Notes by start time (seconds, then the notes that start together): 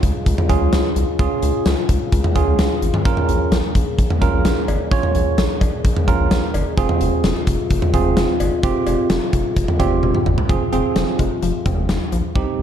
Already playing: C#3 G#3 F4
0.03 C#2, kick, closed hi-hat
0.26 C#2, kick, closed hi-hat
0.38 mid tom
0.49 C#2 C#4 F4 G#4, kick, closed hi-hat
0.61 C#2
0.73 C#2, snare, closed hi-hat
0.96 C2, closed hi-hat
1.19 C#2 G#3 C#4 F4 G#4, kick, closed hi-hat
1.42 C#2, closed hi-hat
1.66 C#2, snare, closed hi-hat
1.89 C#2, kick, closed hi-hat
2.12 C#2, kick, closed hi-hat
2.24 mid tom
2.35 C#2 C#4 F4 G#4, kick, closed hi-hat
2.47 C#2
2.59 C#2, snare, closed hi-hat
2.82 G#1, closed hi-hat
2.94 mid tom
3.05 A#1 A#3 C#4 F4 G#4 A#4, kick, closed hi-hat
3.17 mid tom
3.29 A#1, closed hi-hat
3.52 A#1, snare, closed hi-hat
3.75 A#1, kick, closed hi-hat
3.98 A#1, kick, closed hi-hat
4.10 mid tom
4.21 A#1 C#4 F4 A#4, kick, closed hi-hat
4.33 A#1
4.45 A#1, snare, closed hi-hat
4.68 G#1, closed hi-hat, cowbell
4.91 A#1 C#4 F4 C#5, kick, closed hi-hat
5.03 mid tom
5.15 A#1, closed hi-hat
5.38 A#1, snare, closed hi-hat
5.61 A#1, kick, closed hi-hat, cowbell
5.85 A#1, kick, closed hi-hat
5.96 mid tom
6.08 A#1 C#4 F4 A#4, kick, closed hi-hat
6.19 A#1
6.31 A#1, snare, closed hi-hat
6.54 G1, closed hi-hat, cowbell
6.77 F1 C3 G#3 C4 F4 G#4, kick, closed hi-hat
6.89 mid tom
7.01 F1, closed hi-hat
7.24 F1, snare, closed hi-hat
7.47 F1, kick, closed hi-hat
7.70 F1, kick, closed hi-hat
7.82 mid tom
7.93 F1 C4 F4 G#4, kick, closed hi-hat
8.05 F1
8.17 F1, snare, closed hi-hat
8.40 G1, closed hi-hat, cowbell
8.63 F1 C4 F4 G4, kick, closed hi-hat
8.87 F1, closed hi-hat, cowbell
9.10 F1, snare, closed hi-hat
9.33 F1, kick, closed hi-hat
9.56 F1, kick, closed hi-hat
9.68 mid tom
9.80 F1 C4 F4 G4, kick, closed hi-hat, cowbell
9.91 F1
10.03 F1, high tom
10.15 mid tom
10.26 G1, mid tom
10.38 floor tom
10.49 F1 C3 F3 G#3 C4 F4 G#4, kick, closed hi-hat
10.73 F1 C4 F4 G#4, closed hi-hat
10.96 F1 F3, snare, closed hi-hat
11.19 F1 G#3, kick, closed hi-hat
11.42 F1 F3, closed hi-hat
11.66 F1 C4, kick, closed hi-hat, mid tom
11.77 F1
11.89 F1 F3, snare, closed hi-hat
12.12 A#1 F3, closed hi-hat
12.35 C2 C4 D#4 G4, kick
12.59 C2